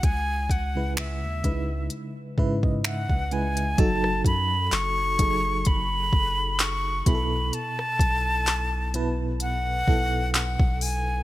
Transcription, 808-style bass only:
X:1
M:4/4
L:1/16
Q:"Swing 16ths" 1/4=64
K:F#dor
V:1 name="808-style bass" clef=bass
C,,2 C,,3 D,, C,,2 z2 G,,3 C,,3 | F,,,2 F,,2 F,,,2 F,,,2 F,,,2 F,,,4 B,,,2 | z2 B,,,8 B,,,3 B,,,3 |]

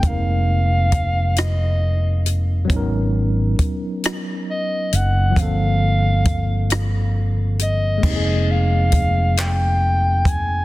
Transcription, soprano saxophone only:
X:1
M:6/8
L:1/8
Q:3/8=45
K:Ablyd
V:1 name="Soprano saxophone"
f3 e2 z | z4 e _g | f4 z e- | e f2 g2 a |]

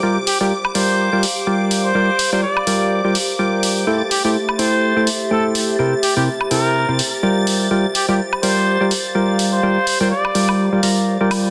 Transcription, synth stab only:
X:1
M:4/4
L:1/16
Q:"Swing 16ths" 1/4=125
K:Gdor
V:1 name="Synth stab"
[G,FBdg] z2 [G,FBdg] z2 [G,FBdg]3 [G,FBdg] z2 [G,FBdg]4 | [G,FBdg] z2 [G,FBdg] z2 [G,FBdg]3 [G,FBdg] z2 [G,FBdg]4 | [A,EAcg] z2 [A,EAcg] z2 [A,EAcg]3 [A,EAcg] z2 [A,EAcg]4 | [C,EBcg] z2 [C,EBcg] z2 [C,EBcg]3 [C,EBcg] z2 [G,FBdg]4 |
[G,FBdg] z2 [G,FBdg] z2 [G,FBdg]3 [G,FBdg] z2 [G,FBdg]4 | [G,FBdg] z2 [G,FBdg] z2 [G,FBdg]3 [G,FBdg] [G,FBdb]3 [G,FBdg]3 |]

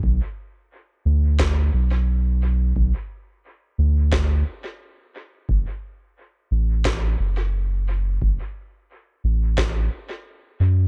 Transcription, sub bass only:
X:1
M:4/4
L:1/8
Q:"Swing 16ths" 1/4=88
K:Bm
V:1 name="Sub bass" clef=bass
B,,, z2 D,,2 B,,,3 | B,,, z2 D,,2 z3 | F,,, z2 A,,,2 F,,,3 | F,,, z2 A,,,2 z2 F,, |]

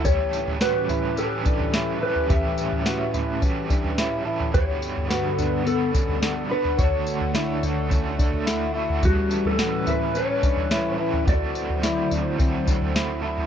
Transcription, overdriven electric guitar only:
X:1
M:4/4
L:1/8
Q:1/4=107
K:Amix
V:1 name="Overdriven electric guitar"
[A,,E,G,CGA]4 [G,CGA]3 [G,CGA] | [A,,E,G,CGA]4 [G,CGA]3 [G,CGA] | [G,DFB]4 [G,DFB]3 [DFB] | [D,A,DFA]4 [A,DFA]3 [DFA] |
[A,,E,G,CA]4 [G,CGA]3 [G,CGA] | [D,A,=CFA]4 [A,CFA]3 [CFA] |]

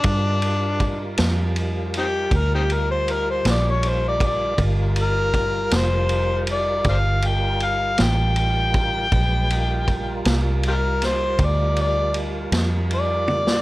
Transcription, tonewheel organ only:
X:1
M:12/8
L:1/8
Q:3/8=53
K:Gm
V:1 name="Tonewheel organ"
[G,FB]12 | [G,FB]12 | [^F,_A,=B] [G,=F_B]8- [G,FB]3 |]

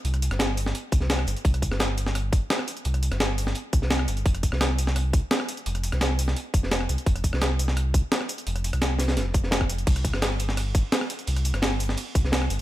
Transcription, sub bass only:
X:1
M:4/4
L:1/16
Q:1/4=171
K:Flyd
V:1 name="Sub bass" clef=bass
C,,3 G,,,4- G,,, z2 C,, C,,3 G,,, z | C,,3 G,,,8 z4 z | C,,3 G,,,4- G,,, z2 C,, C,,3 G,,,2 | F,,,3 C,,8 z4 z |
F,,,3 C,,4- C,, z2 F,,, F,,,3 C,, z | F,,,3 C,,8 z4 z | F,,,3 C,,4- C,, F,,,8 | C,,3 G,,,8 z4 z |
C,,3 G,,,4- G,,, z2 C,, C,,3 G,,, z |]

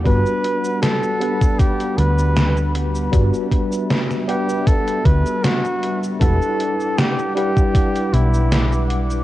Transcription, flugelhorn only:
X:1
M:4/4
L:1/16
Q:1/4=78
K:G
V:1 name="Flugelhorn"
B4 A4 G2 B4 z2 | z6 G2 A2 B2 F3 z | A4 G2 G4 E4 z2 |]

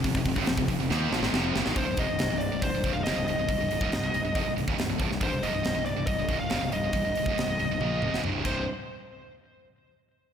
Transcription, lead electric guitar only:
X:1
M:4/4
L:1/16
Q:1/4=139
K:Cm
V:1 name="Lead electric guitar"
z16 | c2 e4 d2 c3 f e2 e2- | e8- e2 z6 | c2 e4 d2 e3 f3 e2- |
e12 z2 c2 | z16 |]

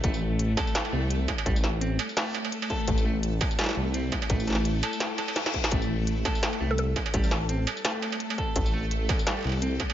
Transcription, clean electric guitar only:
X:1
M:4/4
L:1/8
Q:"Swing 16ths" 1/4=169
K:Am
V:1 name="Clean electric guitar"
A,3 A2 A, z2 | G, z C z A,3 A- | A A, z2 G, z C z | A,3 A2 A z2 |
A,3 A2 A, z2 | G, z C z A,3 A- | A A, z2 G, z C z |]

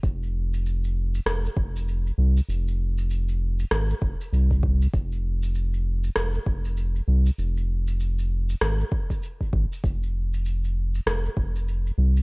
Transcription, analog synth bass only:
X:1
M:4/4
L:1/8
Q:"Swing 16ths" 1/4=98
K:Fm
V:1 name="Analog synth bass" clef=bass
F,,,4 F,,, F,,,2 C,, | F,,,4 A,,, F,,, C,,2 | F,,,4 F,,, F,,,2 C,, | F,,,4 A,,, z2 A,,, |
F,,,4 F,,, F,,,2 C,, |]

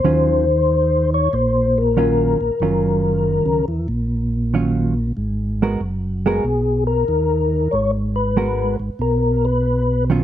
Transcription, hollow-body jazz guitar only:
X:1
M:4/4
L:1/8
Q:"Swing" 1/4=94
K:Ebm
V:1 name="Hollow-body jazz guitar"
[E,G,DF] z4 z [E,G,DF] z | [E,G,DF]3 z3 [E,G,DF] z | z [A,CGB] z [A,CGB] z4 | z2 [A,CGB] z4 [E,G,DF] |]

